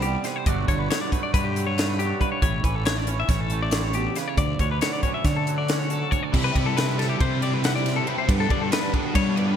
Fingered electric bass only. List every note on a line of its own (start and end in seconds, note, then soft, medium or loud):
0.00 0.16 C2 medium
0.46 0.66 G1 loud
0.68 0.88 G1 medium
1.34 2.12 G2 medium
2.42 2.61 A1 medium
2.63 3.22 A1 medium
3.29 4.07 A1 medium
4.37 4.57 D2 loud
4.59 4.79 D2 medium
5.24 6.03 D3 medium
6.33 6.53 C3 medium
6.55 7.14 C3 medium
7.21 7.99 C3 medium
8.29 8.48 G2 loud
8.50 8.70 G2 medium
9.15 9.56 G3 medium